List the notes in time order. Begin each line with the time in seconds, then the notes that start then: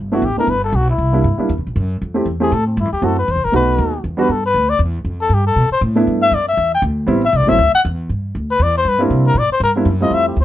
Already playing: G1
0.12 A3 B3 D4 E4 F#4
0.22 A1 G4
0.37 A3 B3 D4 E4 A#4, muted upright bass stroke
0.47 G1 B4
0.64 A4
0.73 B1 F#4
0.90 E4
0.98 C2
1.12 G3 A#3 D4 E4
1.24 G2
1.38 G3 A#3 D4 E4, muted upright bass stroke
1.49 E2
1.58 C2
1.67 A#1
1.76 F#2
2.02 F2
2.14 A3 C4 E4 G4
2.26 E2
2.40 A3 C4 E4 G4 G#4
2.52 A2 A4
2.67 C4
2.77 G2 E4
2.85 F2
2.92 E2 G4
3.02 F#2 A3 C4 E4 F#4 A4
3.19 B4
3.28 E2 C5
3.36 C2
3.44 A1 A#4
3.52 B1 A3 B3 D#4 F#4 B4
3.78 D#2
4.04 E2
4.17 G3 B3 D4 F#4 B4
4.29 G2 A4
4.46 B4
4.54 D2
4.69 D5
4.79 E2
5.05 F2
5.21 A4
5.30 G2
5.34 G4
5.47 A4
5.56 B2
5.70 C5, muted upright bass stroke
5.81 A2
5.95 A3 B3 D4 E4
6.07 G2
6.22 E5
6.32 F#2 D5
6.48 E5
6.57 E2
6.75 G5
6.82 D2
7.07 A1 G3 B3 C4 E4
7.25 E5
7.33 C2 D5
7.41 A1
7.47 G1 F#3 A3 C4 E4 E5
7.59 D2
7.74 F#5, muted upright bass stroke
7.85 E2
8.09 G2
8.35 D2
8.51 B4
8.59 E2 D5
8.77 C5
8.85 G2 B4
8.99 G3 A#3 C4 D4 E4
9.10 C3
9.27 A#4
9.35 A#2 D5
9.50 C5, muted upright bass stroke
9.60 G2 A#4
9.76 G3 A#3 C4 D4 E4
9.85 F#2
10.00 G3 A3 C4 E4 F4 D#5
10.11 F2 E5
10.28 G4
10.36 D2 C5